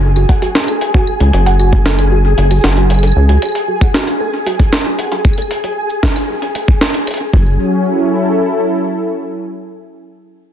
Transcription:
Already playing: analog synth bass F#1, synth texture G#4 G#5
0.16 synth pluck F#4, claves
0.29 synth pluck F#5, kick, closed hi-hat
0.42 synth pluck F#4, closed hi-hat
0.55 snare
0.68 synth pluck A4, closed hi-hat, claves
0.81 closed hi-hat
0.94 synth pluck F#4, kick
1.07 claves
1.20 analog synth bass C#2, closed hi-hat
1.33 analog synth bass F#1, synth pluck F#4, closed hi-hat
1.46 synth pluck F#5, closed hi-hat
1.60 synth pluck F#4, claves
1.73 kick, cabasa
1.86 synth pluck A4, snare, closed hi-hat
1.99 closed hi-hat, claves
2.12 synth pluck F#4
2.38 analog synth bass F#1, closed hi-hat
2.51 synth pluck F#4, closed hi-hat, cabasa, claves
2.54 cabasa
2.56 cabasa
2.59 cabasa
2.61 analog synth bass F#1, synth pluck F#5, snare, cabasa
2.77 synth pluck F#4, closed hi-hat
2.90 closed hi-hat, claves
2.94 claves
2.99 claves
3.03 synth pluck A4, closed hi-hat, claves
3.07 claves
3.12 claves
3.16 analog synth bass C#2
3.29 synth pluck F#4, closed hi-hat
3.42 closed hi-hat, claves
3.45 claves
3.49 claves
3.52 closed hi-hat, claves
3.68 synth pluck F#4
3.81 synth pluck F#5, kick, claves
3.94 synth pluck F#4, snare, closed hi-hat
4.07 closed hi-hat
4.20 synth pluck A4
4.47 synth pluck F#4, closed hi-hat
4.60 kick, closed hi-hat
4.73 snare, claves
4.86 synth pluck F#4, closed hi-hat
4.99 synth pluck F#5, closed hi-hat
5.12 synth pluck F#4, closed hi-hat
5.25 kick, claves
5.33 claves
5.38 synth pluck A4, closed hi-hat
5.42 claves
5.51 closed hi-hat
5.64 synth pluck F#4, closed hi-hat, claves
5.90 cabasa
6.03 synth pluck F#4, kick, snare, closed hi-hat
6.16 synth pluck F#5, closed hi-hat, claves
6.29 synth pluck F#4
6.42 closed hi-hat
6.55 synth pluck A4, closed hi-hat, claves
6.68 kick, cabasa
6.81 snare
6.94 closed hi-hat, cabasa
7.07 closed hi-hat, claves
7.11 closed hi-hat
7.14 closed hi-hat
7.17 synth pluck A4, closed hi-hat
7.33 analog synth bass F#1, analog synth pad F#3, synth pluck F#4, kick
7.41 analog synth pad C#4
7.75 analog synth pad E4
7.83 analog synth pad A4

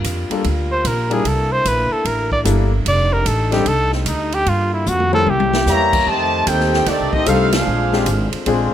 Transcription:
Already playing: saxophone section G3 A#3 D4 F4
0.04 upright bass F2, kick, hi-hat pedal, ride
0.30 grand piano G3 A#3 D4 F4 A4, muted upright bass stroke, ride
0.44 upright bass D2, kick, ride
0.72 trumpet C5
0.85 upright bass A#1, trumpet A#4, kick, hi-hat pedal, ride
1.10 grand piano G3 A#3 D4 E4 A#4, trumpet G#4, ride
1.25 upright bass C2, saxophone section A3 E4, trumpet A4, kick, ride
1.52 trumpet C5
1.65 upright bass A#1, trumpet B4, kick, hi-hat pedal, ride
1.91 trumpet A4, muted upright bass stroke
2.05 upright bass A1, trumpet A#4, kick, ride
2.32 trumpet D5, kick
2.44 upright bass G1, grand piano G3 A#3 D4 E4 A4, kick, hi-hat pedal, ride
2.85 upright bass F1, saxophone section G3 D#4, trumpet D5, kick, ride
3.13 trumpet A#4
3.26 upright bass A1, trumpet A4, kick, hi-hat pedal, ride
3.51 grand piano G3 C4 D4 D#4 A4, trumpet G4, snare, ride
3.66 upright bass C2, trumpet A4, kick, ride
3.92 trumpet C4, snare
4.06 upright bass D2, trumpet D#4, kick, hi-hat pedal, ride
4.32 trumpet G4, ride
4.46 upright bass G2, saxophone section D3 A#3 F4, trumpet F4, kick, ride
4.74 trumpet E4
4.86 upright bass F2, trumpet F#4, hi-hat pedal, mid tom
5.00 mid tom
5.12 grand piano G3 C4 C#4 E4 A#4, trumpet A4, mid tom
5.25 upright bass C2, saxophone section C#3 C4 E4, high tom
5.30 trumpet G4
5.40 high tom
5.53 snare
5.66 upright bass E2, trombone section E3 G3 A#3, trumpet section G4 C#5 E5 A#5, snare, hi-hat pedal
5.93 kick, crash
6.06 upright bass F2, trombone section C3 D#3 A3, saxophone section D#3 A3 D#4 G4, trumpet section G4 C5 D#5 A5, kick
6.47 upright bass D#2, trombone section C4 D#4 G4, trumpet section D#4 A4 C5 G5, kick, hi-hat pedal, ride
6.60 snare
6.73 snare
6.86 upright bass D2, trombone section D#3 A3 D4, trumpet section C4 G4 A4 D5, kick, snare, ride
7.00 upright bass C2
7.12 upright bass A1, trombone section A3 C4 D#4, trumpet section C4 G4 A4 D#5, kick
7.26 upright bass C2, grand piano G3 C4 D4 D#4 A4, trombone section A3 C4 F4, trumpet section D#4 A4 C5 F5, kick, hi-hat pedal, ride
7.53 trombone section G#3 D4 F4, trumpet section D4 G#4 C5 F5, snare, ride
7.66 upright bass A#1, saxophone section D3 G#3 C4 F4
7.93 grand piano G#3 C4 D4 F4 G4, snare
8.06 upright bass G#1, kick, hi-hat pedal, ride
8.33 muted upright bass stroke, ride
8.46 upright bass A#1, grand piano G#3 C4 D4 F4 G#4, kick, ride

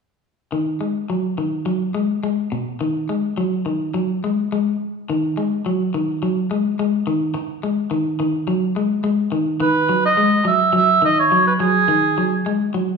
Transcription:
0.52 clean electric guitar D#3
0.81 clean electric guitar G#3
1.10 clean electric guitar F#3
1.38 clean electric guitar D#3
1.66 clean electric guitar F#3
1.94 clean electric guitar G#3
2.23 clean electric guitar G#3
2.52 clean electric guitar B2
2.81 clean electric guitar D#3
3.09 clean electric guitar G#3
3.38 clean electric guitar F#3
3.66 clean electric guitar D#3
3.94 clean electric guitar F#3
4.24 clean electric guitar G#3
4.52 clean electric guitar G#3
5.10 clean electric guitar D#3
5.37 clean electric guitar G#3
5.66 clean electric guitar F#3
5.94 clean electric guitar D#3
6.23 clean electric guitar F#3
6.51 clean electric guitar G#3
6.79 clean electric guitar G#3
7.07 clean electric guitar D#3
7.34 muted clean electric guitar stroke
7.63 clean electric guitar G#3
7.91 clean electric guitar D#3
8.20 clean electric guitar D#3
8.48 clean electric guitar F#3
8.76 clean electric guitar G#3
9.04 clean electric guitar G#3
9.32 clean electric guitar D#3
9.60 clean electric guitar D#3, oboe B4
9.89 clean electric guitar F#3
10.06 oboe D#5
10.17 clean electric guitar G#3
10.45 clean electric guitar F#3, oboe E5
10.73 clean electric guitar F#3, oboe E5
11.02 clean electric guitar D#3, oboe D#5
11.19 oboe C#5
11.32 clean electric guitar F#3
11.47 oboe B4
11.60 clean electric guitar F#3, oboe G#4
11.88 clean electric guitar D#3
12.18 clean electric guitar F#3
12.46 clean electric guitar G#3
12.74 clean electric guitar F#3

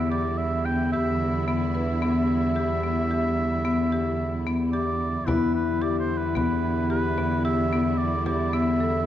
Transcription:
Already playing: cello E2, string section D3 G3 E4, oboe E5
0.11 marimba G4, oboe D5
0.38 oboe E5
0.65 marimba B3, oboe G5
0.92 marimba G4, oboe E5
1.47 marimba B3, oboe E5
1.75 marimba B4
2.02 marimba B3
2.56 marimba G4
2.83 marimba B3
3.11 marimba G4
3.65 marimba B3
3.92 marimba G4
4.47 marimba B3
4.73 marimba G4, oboe D5
5.27 cello E2, string section D3 G3 E4, marimba B3, vibraphone E4, oboe B4, frame drum
5.55 oboe B4
5.82 marimba G4, oboe D5
5.99 oboe C5
6.18 oboe B4
6.35 marimba B3, oboe B4, frame drum
6.90 marimba G4, oboe B4
7.18 marimba B3, frame drum
7.45 marimba G4, oboe E5
7.72 marimba B3, frame drum
7.98 oboe D5
8.26 marimba G4, oboe D5, frame drum
8.53 marimba B3, oboe E5
8.80 marimba A4

